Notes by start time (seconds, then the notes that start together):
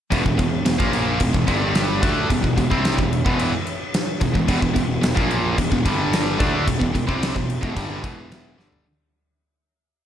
0.11 E1 E2 B2, kick, crash
0.24 E1 E2 B2, kick
0.38 E1 E2 B2, kick, crash
0.65 E1 E2 B2, snare, crash
0.78 A#1 A#2 F3 A#3, kick
0.93 crash
1.20 E1 E2 B2, kick, crash
1.33 E1 E2 B2, kick
1.47 G1 G2 D3 G3, kick, crash
1.75 snare, crash
2.01 D2 D3 A3 D4, kick, crash
2.29 E1 E2 B2, kick, crash
2.42 E1 E2 B2, kick
2.56 E1 E2 B2, kick, crash
2.70 C2 C3 G3 C4, kick
2.85 snare, crash
2.98 E1 E2 B2, kick
3.13 crash
3.25 E1 E2 B2 E3, kick
3.39 crash
3.67 crash
3.94 snare, crash
4.21 E1 E2 B2, kick, crash
4.33 E1 E2 B2, kick
4.47 E1 E2 B2, kick, crash
4.61 E1 E2 B2, kick
4.73 E1 E2 B2, kick, crash
5.01 E1 E2 B2, snare, crash
5.15 A#1 A#2 F3 A#3, kick
5.31 crash
5.56 E1 E2 B2, kick, crash
5.71 E1 E2 B2, kick
5.85 G1 G2 D3 G3, kick, crash
6.13 snare, crash
6.38 D2 D3 A3 D4, kick, crash
6.66 E1 E2 B2, kick, crash
6.79 E1 E2 B2, kick
6.94 E1 E2 B2, kick, crash
7.07 C2 C3 G3 C4, kick
7.23 snare, crash
7.35 E1 E2 B2, kick
7.50 crash
7.61 E1 E2 B2, kick
7.75 G1 G2 D3 G3, kick, crash
8.02 E1 E2 B2 E3, kick, crash
8.32 snare, crash
8.57 G1 G2 D3 G3, snare
8.73 floor tom